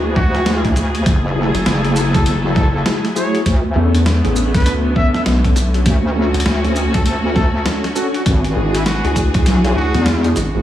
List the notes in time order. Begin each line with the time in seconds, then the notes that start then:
Already playing: D2 E3 D4 E4 F#4 G#4
0.16 F#4, kick
0.35 snare
0.46 D4 E4 F#4 G#4, snare, closed hi-hat
0.65 kick, closed hi-hat
0.76 D2, snare, shaker
0.95 closed hi-hat
1.06 F#1 F#3 E4 A4, kick, closed hi-hat
1.36 A3 E4 F#4 G#4
1.54 F#1, closed hi-hat
1.66 F#1, snare, closed hi-hat
1.85 A3 E4 F#4 G#4, closed hi-hat
1.96 shaker
2.15 A3 E4 F#4 G#4 A4, kick, closed hi-hat
2.26 F#1 A4, closed hi-hat
2.44 A3 E4 F#4 G#4
2.56 A4, kick, snare
2.75 A4
2.86 A3 E4 F#4 G#4, snare, closed hi-hat
3.05 snare, closed hi-hat
3.16 A3 E4 F#4 G#4 C#5, shaker
3.35 closed hi-hat
3.46 D2 D3 A3 B3, kick, closed hi-hat
3.76 E2 B3 C#4 D4 A4
3.95 closed hi-hat
4.06 snare, closed hi-hat
4.24 A1 B3 C#4 D4 G#4, closed hi-hat
4.36 shaker
4.54 B3 C#4 D4 A4 B4, kick, closed hi-hat
4.56 closed hi-hat
4.60 closed hi-hat
4.62 closed hi-hat
4.64 D2, closed hi-hat
4.66 closed hi-hat
4.96 B3 C#4 D4 A4 E5, kick
5.14 E5, snare
5.26 B1, snare, closed hi-hat
5.45 B3 C#4 D4 A4, kick, closed hi-hat
5.56 snare, shaker
5.74 C#4 D4 F#4 A4, closed hi-hat
5.85 D2 A3 C#4 F#4, kick, closed hi-hat
6.16 C#4 D4 F#4 A4
6.34 D2, closed hi-hat
6.40 closed hi-hat
6.46 D2, snare
6.64 C#4 D4 F#4 A4, closed hi-hat
6.76 shaker
6.94 C#4 D4 F#4 A4, kick, closed hi-hat
7.06 D2 A4, closed hi-hat
7.25 C#4 D4 F#4 A4
7.35 A4, kick, snare
7.54 A4
7.66 C#4 D4 F#4 A4, snare, closed hi-hat
7.84 snare, closed hi-hat
7.96 C#4 D4 F#4 A4, shaker
8.14 F#4, closed hi-hat
8.26 G#1 E3 D4 F#4 G#4, kick, closed hi-hat
8.44 closed hi-hat
8.56 G#1 D4 E4 F#4 G#4
8.74 E4, closed hi-hat
8.86 F#4, snare, closed hi-hat
9.04 D2 D4 E4 F#4 G#4, closed hi-hat
9.16 kick, snare, shaker
9.34 D4 E4 F#4 G#4, kick, closed hi-hat
9.46 B1, snare, closed hi-hat
9.65 closed hi-hat
9.76 D2 D4 E4 F#4 G#4
9.95 E2, snare, closed hi-hat
10.06 snare, closed hi-hat
10.24 D4 E4 F#4 G#4, closed hi-hat
10.36 G#1, snare, shaker
10.55 G#1 A3 E4 F#4 G#4